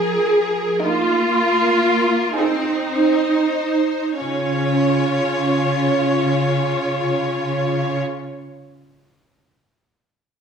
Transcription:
Already playing: cello section F3, violin section D4 A#4, viola section G#4
0.83 cello section A#3, violin section D#4, viola section F4
1.33 violin section A#4
2.36 cello section C4, viola section D#4, violin section G#4 C5
2.94 violin section C5
4.19 cello section C#3, viola section C#4, violin section F4 C#5

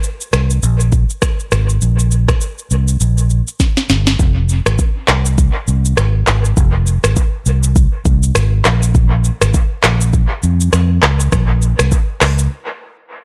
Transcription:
0.03 shaker
0.21 shaker
0.33 fingered electric bass C2, finger snap, cross-stick, shaker
0.50 shaker
0.63 fingered electric bass A#1, shaker
0.80 shaker
0.92 kick, shaker
1.10 shaker
1.22 finger snap, kick, cross-stick, shaker
1.40 shaker
1.52 fingered electric bass G#1, finger snap, cross-stick, shaker
1.69 shaker
1.82 fingered electric bass A#1, shaker
1.99 shaker
2.11 shaker
2.28 finger snap, kick, cross-stick, shaker
2.41 shaker
2.58 shaker
2.71 fingered electric bass C2, shaker
2.88 shaker
3.00 fingered electric bass A#1, shaker
3.18 shaker
3.30 shaker
3.48 shaker
3.60 kick, snare, shaker
3.77 snare, shaker
3.90 fingered electric bass G1, snare, shaker
4.07 snare, shaker
4.19 fingered electric bass F1, kick, shaker
4.49 shaker
4.66 fingered electric bass G#1, finger snap, cross-stick, shaker
4.79 kick, shaker
5.08 fingered electric bass C2, finger snap, cross-stick, clap, shaker
5.26 shaker
5.38 kick, shaker
5.68 fingered electric bass C2, shaker
5.85 shaker
5.97 fingered electric bass G#1, finger snap, cross-stick, shaker
6.27 fingered electric bass G#1, finger snap, cross-stick, clap, shaker
6.45 shaker
6.57 fingered electric bass F1, kick, shaker
6.87 shaker
7.04 fingered electric bass G#1, finger snap, cross-stick, shaker
7.16 kick, shaker
7.46 fingered electric bass C2, shaker
7.63 shaker
7.76 kick, shaker
8.05 fingered electric bass C2, kick, shaker
8.23 shaker
8.35 fingered electric bass G#1, finger snap, cross-stick, shaker
8.65 fingered electric bass A#1, finger snap, cross-stick, clap, shaker
8.83 shaker
8.95 kick, shaker
9.24 shaker
9.41 fingered electric bass G#1, finger snap, cross-stick, shaker
9.54 kick, shaker
9.84 fingered electric bass A#1, finger snap, cross-stick, clap, shaker
10.01 shaker
10.13 kick, shaker
10.43 fingered electric bass F2, shaker
10.61 shaker
10.73 fingered electric bass F2, finger snap, cross-stick, shaker
11.02 fingered electric bass C#2, finger snap, cross-stick, clap, shaker
11.20 shaker
11.32 fingered electric bass A#1, finger snap, kick, cross-stick, shaker
11.62 shaker
11.79 fingered electric bass C2, finger snap, cross-stick, shaker
11.92 kick, shaker
12.21 fingered electric bass C#2, finger snap, cross-stick, clap, open hi-hat, shaker
12.39 shaker

